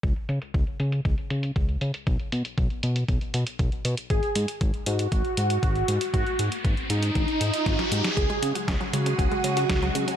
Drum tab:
HH |xxxxxxxxxxxxxxxx|xxxxxxxxxxxxxxxx|xxxxxxxxxxxxxxxx|xxxxxxxxxxxxxxxx|
SD |----------------|----------------|----------------|------------oo-o|
BD |o---o---o---o---|o---o---o---o---|o---o---o---o---|o---o---o---o---|

HH |xxxxxxxxxxxxxxxx|
SD |----o-------o---|
BD |o---o---o---o---|